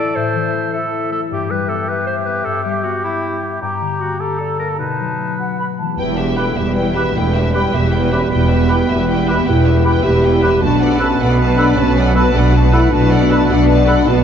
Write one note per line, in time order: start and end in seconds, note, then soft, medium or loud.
0.00 0.14 A2 medium
0.00 0.34 E3 soft
0.00 0.53 A3 soft
0.00 0.72 E4 soft
0.00 1.02 A4 medium
0.00 0.17 D5 medium
0.00 0.91 E5 soft
0.15 1.32 A2 soft
0.15 0.73 C5 medium
0.15 0.71 E5 medium
0.35 1.32 E3 soft
0.54 1.10 A3 soft
0.72 3.64 E4 soft
0.72 1.11 A4 medium
0.72 1.29 E5 soft
0.92 2.06 E5 soft
1.11 1.32 A3 soft
1.11 1.21 A4 medium
1.30 2.45 G2 medium
1.30 3.58 G4 medium
1.30 1.52 G4 medium
1.30 1.87 E5 soft
1.50 2.64 G3 soft
1.50 1.70 B4 medium
1.69 2.25 B3 soft
1.69 1.90 A4 medium
1.88 3.02 G4 soft
1.88 2.06 B4 medium
1.88 3.01 E5 medium
2.07 2.16 C5 medium
2.07 3.22 E5 soft
2.25 2.83 B3 soft
2.25 2.46 B4 medium
2.44 3.61 G2 soft
2.44 2.63 A4 medium
2.64 4.81 G3 soft
2.64 2.85 G4 medium
2.83 3.41 B3 soft
2.83 3.03 F#4 medium
3.04 3.41 E4 medium
3.04 4.19 G4 soft
3.04 3.61 E5 soft
3.23 3.64 E5 soft
3.42 3.63 B3 soft
3.62 4.81 G2 soft
3.62 4.22 G4 soft
3.62 4.02 G4 medium
3.62 4.19 A#5 soft
3.81 4.81 D3 soft
4.00 4.58 A#3 soft
4.00 4.20 F#4 medium
4.20 4.81 G4 soft
4.20 4.40 G4 medium
4.20 4.79 A4 soft
4.20 4.79 A#5 soft
4.38 4.58 A4 medium
4.38 4.82 D5 soft
4.59 4.81 A#3 soft
4.59 4.68 A#4 medium
4.78 6.00 B2 soft
4.78 5.37 D#4 medium
4.78 5.77 B4 soft
4.78 5.35 A5 soft
5.00 6.00 F#3 soft
5.19 5.78 A3 soft
5.39 6.00 F#4 soft
5.39 5.58 F#5 soft
5.59 5.93 B4 soft
5.59 5.65 B5 soft
5.78 9.71 E3 soft
5.78 6.00 A3 soft
5.78 5.98 A5 soft
5.85 9.75 B3 soft
5.90 9.80 G4 soft
5.94 9.84 B4 soft
5.98 6.50 E1 soft
5.98 6.50 E2 medium
5.98 10.59 B2 soft
5.98 10.59 G3 soft
5.98 6.35 B3 medium
5.98 6.17 E4 soft
5.98 10.58 B4 soft
5.98 6.17 B4 soft
5.98 6.17 G5 soft
6.17 6.37 G4 soft
6.17 6.38 G4 soft
6.17 6.37 E5 soft
6.36 6.57 A3 medium
6.36 6.57 E4 soft
6.36 6.45 G4 soft
6.36 6.44 B4 soft
6.36 6.57 B4 soft
6.36 6.57 G5 soft
6.36 6.46 B5 medium
6.56 7.09 E1 soft
6.56 7.09 E2 medium
6.56 6.96 G3 medium
6.56 6.76 G4 soft
6.56 6.76 E5 soft
6.76 6.94 E4 soft
6.76 6.95 B4 soft
6.76 6.95 G5 soft
6.95 7.15 B3 medium
6.95 7.16 G4 soft
6.95 7.03 G4 medium
6.95 7.16 G4 soft
6.95 7.03 B4 soft
6.95 7.15 E5 soft
6.95 7.05 B5 soft
7.15 7.67 E1 medium
7.15 7.67 E2 medium
7.15 7.54 A3 medium
7.15 7.35 E4 soft
7.15 7.36 B4 soft
7.15 7.36 G5 soft
7.35 7.55 G4 soft
7.35 7.55 E5 soft
7.54 7.74 G3 medium
7.54 7.72 E4 soft
7.54 7.61 G4 medium
7.54 7.61 B4 soft
7.54 7.73 B4 soft
7.54 7.72 G5 soft
7.54 7.63 B5 soft
7.74 8.25 E1 medium
7.74 8.25 E2 medium
7.74 8.13 B3 medium
7.74 7.93 G4 soft
7.74 7.93 E5 soft
7.92 8.13 E4 soft
7.92 8.12 B4 soft
7.92 8.12 G5 soft
8.12 8.21 C#4 medium
8.12 8.19 G4 medium
8.12 8.32 G4 soft
8.12 8.19 B4 soft
8.12 8.32 E5 soft
8.12 8.21 B5 medium
8.31 8.83 E1 medium
8.31 8.83 E2 medium
8.31 8.89 B3 medium
8.31 8.50 E4 soft
8.31 8.50 B4 soft
8.31 8.49 G5 soft
8.51 8.70 G4 soft
8.51 8.70 E5 soft
8.68 8.90 E4 soft
8.68 8.76 G4 medium
8.68 8.76 B4 medium
8.68 8.90 B4 soft
8.68 8.89 G5 soft
8.68 8.79 B5 medium
8.89 9.40 E1 medium
8.89 9.41 E2 medium
8.89 9.47 B3 medium
8.89 9.09 G4 soft
8.89 9.09 E5 soft
9.08 9.27 E4 soft
9.08 9.26 B4 soft
9.08 9.27 G5 soft
9.28 9.47 G4 soft
9.28 9.35 G4 medium
9.28 9.48 G4 soft
9.28 9.35 B4 medium
9.28 9.47 E5 soft
9.28 9.37 B5 medium
9.47 9.98 E1 medium
9.47 9.98 E2 medium
9.47 9.67 E4 medium
9.47 10.05 E4 medium
9.47 9.67 B4 soft
9.47 9.67 G5 soft
9.66 9.86 G4 soft
9.66 9.86 E5 soft
9.85 10.04 E4 medium
9.85 9.92 G4 medium
9.85 9.92 B4 medium
9.85 10.04 B4 soft
9.85 10.04 G5 soft
9.85 9.94 B5 medium
10.04 10.56 E1 medium
10.04 10.56 E2 medium
10.04 10.61 G4 medium
10.04 10.24 G4 soft
10.04 10.25 G4 medium
10.04 10.23 E5 soft
10.23 10.43 E4 soft
10.23 10.44 B4 soft
10.23 10.43 G5 soft
10.42 14.24 B2 medium
10.42 10.62 G4 soft
10.42 10.50 G4 medium
10.42 10.63 G4 soft
10.42 10.49 B4 medium
10.42 10.63 E5 soft
10.42 10.53 B5 medium
10.49 14.24 A3 soft
10.53 14.24 F#4 soft
10.58 14.24 B4 soft
10.62 11.13 B1 medium
10.62 14.24 B2 medium
10.62 11.13 B2 medium
10.62 14.24 A3 medium
10.62 11.01 D4 medium
10.62 10.81 F#4 medium
10.62 14.24 B4 medium
10.62 10.81 B4 medium
10.62 10.80 A5 medium
10.81 11.01 A4 medium
10.81 11.01 D5 medium
10.81 11.01 F#5 soft
10.99 11.19 C#4 medium
10.99 11.20 F#4 soft
10.99 11.07 A4 medium
10.99 11.07 B4 medium
10.99 11.21 B4 soft
10.99 11.19 A5 medium
10.99 11.11 B5 medium
11.20 11.71 B1 medium
11.20 11.71 B2 medium
11.20 11.57 B3 medium
11.20 11.39 A4 medium
11.20 11.40 D5 medium
11.20 11.40 F#5 medium
11.40 11.57 F#4 soft
11.40 11.58 B4 medium
11.40 11.58 A5 soft
11.57 11.77 D4 medium
11.57 11.65 A4 medium
11.57 11.78 A4 soft
11.57 11.65 B4 medium
11.57 11.78 D5 medium
11.57 11.78 F#5 medium
11.57 11.68 B5 medium
11.76 12.29 B1 medium
11.76 12.29 B2 medium
11.76 12.15 C#4 medium
11.76 11.97 F#4 medium
11.76 11.97 B4 medium
11.76 11.97 A5 medium
11.97 12.16 A4 medium
11.97 12.16 D5 medium
11.97 12.17 F#5 medium
12.15 12.35 B3 medium
12.15 12.34 F#4 medium
12.15 12.22 A4 medium
12.15 12.34 B4 medium
12.15 12.22 B4 medium
12.15 12.34 A5 medium
12.15 12.25 B5 medium
12.34 12.85 B1 medium
12.34 12.86 B2 medium
12.34 12.73 D4 medium
12.34 12.55 A4 medium
12.34 12.54 D5 medium
12.34 12.55 F#5 medium
12.54 12.74 F#4 medium
12.54 12.73 B4 medium
12.54 12.74 A5 medium
12.72 12.91 E4 medium
12.72 12.80 A4 medium
12.72 12.93 A4 medium
12.72 12.79 B4 medium
12.72 12.93 D5 medium
12.72 12.92 F#5 medium
12.72 12.82 B5 medium
12.90 13.43 B1 medium
12.90 13.43 B2 medium
12.90 13.49 D4 medium
12.90 13.10 F#4 medium
12.90 13.11 B4 medium
12.90 13.11 A5 medium
13.11 13.30 A4 medium
13.11 13.31 D5 medium
13.11 13.31 F#5 medium
13.30 13.50 F#4 medium
13.30 13.37 A4 medium
13.30 13.37 B4 medium
13.30 13.50 B4 medium
13.30 13.50 A5 medium
13.30 13.41 B5 medium
13.49 14.01 B1 medium
13.49 14.00 B2 medium
13.49 14.07 D4 loud
13.49 13.69 A4 medium
13.49 13.70 D5 medium
13.49 13.68 F#5 medium
13.69 13.87 F#4 medium
13.69 13.87 B4 medium
13.69 13.87 A5 medium
13.87 13.94 A4 medium
13.87 14.08 A4 medium
13.87 13.95 B4 medium
13.87 14.07 D5 medium
13.87 14.07 F#5 medium
13.87 13.97 B5 medium
14.06 14.24 B1 medium
14.06 14.24 B2 medium
14.06 14.24 F#4 loud
14.06 14.24 F#4 medium
14.06 14.24 B4 medium
14.06 14.24 A5 medium